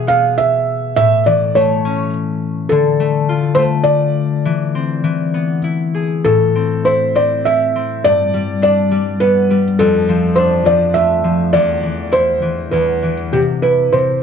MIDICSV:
0, 0, Header, 1, 3, 480
1, 0, Start_track
1, 0, Key_signature, 0, "minor"
1, 0, Tempo, 583658
1, 794, Time_signature, 3, 2, 24, 8
1, 4143, Tempo, 606061
1, 6063, Tempo, 582524
1, 9903, Tempo, 600601
1, 11586, End_track
2, 0, Start_track
2, 0, Title_t, "Felt piano"
2, 0, Program_c, 0, 0
2, 67, Note_on_c, 0, 77, 85
2, 310, Note_on_c, 0, 76, 82
2, 319, Note_off_c, 0, 77, 0
2, 781, Note_off_c, 0, 76, 0
2, 793, Note_on_c, 0, 76, 94
2, 1017, Note_off_c, 0, 76, 0
2, 1037, Note_on_c, 0, 74, 80
2, 1277, Note_on_c, 0, 73, 76
2, 1283, Note_off_c, 0, 74, 0
2, 1724, Note_off_c, 0, 73, 0
2, 2214, Note_on_c, 0, 69, 82
2, 2917, Note_on_c, 0, 72, 86
2, 2955, Note_off_c, 0, 69, 0
2, 2974, Note_off_c, 0, 72, 0
2, 3154, Note_on_c, 0, 74, 86
2, 4577, Note_off_c, 0, 74, 0
2, 5099, Note_on_c, 0, 69, 89
2, 5578, Note_on_c, 0, 72, 78
2, 5596, Note_off_c, 0, 69, 0
2, 5822, Note_on_c, 0, 74, 76
2, 5829, Note_off_c, 0, 72, 0
2, 6044, Note_off_c, 0, 74, 0
2, 6056, Note_on_c, 0, 76, 83
2, 6543, Note_on_c, 0, 74, 99
2, 6561, Note_off_c, 0, 76, 0
2, 7014, Note_off_c, 0, 74, 0
2, 7026, Note_on_c, 0, 74, 86
2, 7497, Note_on_c, 0, 71, 81
2, 7522, Note_off_c, 0, 74, 0
2, 7839, Note_off_c, 0, 71, 0
2, 7981, Note_on_c, 0, 69, 87
2, 8427, Note_off_c, 0, 69, 0
2, 8448, Note_on_c, 0, 72, 84
2, 8698, Note_off_c, 0, 72, 0
2, 8699, Note_on_c, 0, 74, 85
2, 8929, Note_on_c, 0, 76, 83
2, 8944, Note_off_c, 0, 74, 0
2, 9414, Note_on_c, 0, 74, 90
2, 9428, Note_off_c, 0, 76, 0
2, 9906, Note_on_c, 0, 72, 84
2, 9915, Note_off_c, 0, 74, 0
2, 10375, Note_on_c, 0, 71, 65
2, 10396, Note_off_c, 0, 72, 0
2, 10714, Note_off_c, 0, 71, 0
2, 10865, Note_on_c, 0, 67, 79
2, 10919, Note_off_c, 0, 67, 0
2, 11102, Note_on_c, 0, 71, 75
2, 11344, Note_on_c, 0, 72, 74
2, 11351, Note_off_c, 0, 71, 0
2, 11586, Note_off_c, 0, 72, 0
2, 11586, End_track
3, 0, Start_track
3, 0, Title_t, "Harp"
3, 0, Program_c, 1, 46
3, 0, Note_on_c, 1, 47, 61
3, 0, Note_on_c, 1, 68, 51
3, 60, Note_on_c, 1, 59, 51
3, 792, Note_on_c, 1, 45, 62
3, 836, Note_off_c, 1, 47, 0
3, 841, Note_off_c, 1, 68, 0
3, 1041, Note_on_c, 1, 52, 47
3, 1278, Note_on_c, 1, 57, 54
3, 1521, Note_on_c, 1, 61, 55
3, 2234, Note_on_c, 1, 50, 60
3, 2273, Note_off_c, 1, 45, 0
3, 2273, Note_off_c, 1, 52, 0
3, 2284, Note_off_c, 1, 61, 0
3, 2463, Note_off_c, 1, 57, 0
3, 2466, Note_on_c, 1, 57, 53
3, 2614, Note_off_c, 1, 59, 0
3, 2705, Note_on_c, 1, 65, 54
3, 2940, Note_off_c, 1, 57, 0
3, 2944, Note_on_c, 1, 57, 58
3, 3663, Note_on_c, 1, 52, 66
3, 3702, Note_off_c, 1, 50, 0
3, 3712, Note_off_c, 1, 65, 0
3, 3906, Note_on_c, 1, 60, 49
3, 4133, Note_off_c, 1, 52, 0
3, 4143, Note_on_c, 1, 52, 62
3, 4382, Note_on_c, 1, 59, 47
3, 4430, Note_off_c, 1, 60, 0
3, 4618, Note_on_c, 1, 64, 51
3, 4862, Note_on_c, 1, 68, 48
3, 4909, Note_off_c, 1, 57, 0
3, 5105, Note_on_c, 1, 45, 55
3, 5145, Note_off_c, 1, 52, 0
3, 5152, Note_off_c, 1, 68, 0
3, 5345, Note_on_c, 1, 60, 42
3, 5392, Note_off_c, 1, 59, 0
3, 5578, Note_off_c, 1, 64, 0
3, 5581, Note_on_c, 1, 64, 53
3, 5815, Note_off_c, 1, 60, 0
3, 5818, Note_on_c, 1, 60, 49
3, 6056, Note_off_c, 1, 64, 0
3, 6060, Note_on_c, 1, 64, 50
3, 6303, Note_off_c, 1, 60, 0
3, 6306, Note_on_c, 1, 60, 49
3, 6542, Note_on_c, 1, 43, 55
3, 6590, Note_off_c, 1, 45, 0
3, 6785, Note_on_c, 1, 55, 50
3, 7019, Note_on_c, 1, 62, 53
3, 7250, Note_off_c, 1, 55, 0
3, 7260, Note_on_c, 1, 55, 54
3, 7500, Note_on_c, 1, 59, 56
3, 7549, Note_off_c, 1, 60, 0
3, 7736, Note_off_c, 1, 55, 0
3, 7746, Note_on_c, 1, 55, 48
3, 7985, Note_on_c, 1, 41, 59
3, 8032, Note_off_c, 1, 43, 0
3, 8032, Note_off_c, 1, 55, 0
3, 8034, Note_off_c, 1, 64, 0
3, 8226, Note_on_c, 1, 53, 53
3, 8463, Note_off_c, 1, 62, 0
3, 8466, Note_on_c, 1, 62, 56
3, 8682, Note_off_c, 1, 53, 0
3, 8692, Note_on_c, 1, 53, 51
3, 8935, Note_on_c, 1, 57, 52
3, 9166, Note_off_c, 1, 53, 0
3, 9176, Note_on_c, 1, 53, 51
3, 9417, Note_on_c, 1, 40, 60
3, 9459, Note_off_c, 1, 41, 0
3, 9459, Note_off_c, 1, 53, 0
3, 9660, Note_on_c, 1, 52, 46
3, 9899, Note_on_c, 1, 64, 53
3, 10054, Note_off_c, 1, 59, 0
3, 10130, Note_off_c, 1, 52, 0
3, 10140, Note_on_c, 1, 52, 50
3, 10375, Note_off_c, 1, 40, 0
3, 10384, Note_on_c, 1, 40, 60
3, 10420, Note_off_c, 1, 52, 0
3, 10626, Note_on_c, 1, 52, 43
3, 10747, Note_off_c, 1, 62, 0
3, 10867, Note_on_c, 1, 48, 63
3, 10903, Note_off_c, 1, 40, 0
3, 10903, Note_off_c, 1, 52, 0
3, 11104, Note_off_c, 1, 64, 0
3, 11108, Note_on_c, 1, 64, 47
3, 11336, Note_off_c, 1, 48, 0
3, 11346, Note_on_c, 1, 48, 53
3, 11586, Note_off_c, 1, 48, 0
3, 11586, Note_off_c, 1, 57, 0
3, 11586, Note_off_c, 1, 64, 0
3, 11586, End_track
0, 0, End_of_file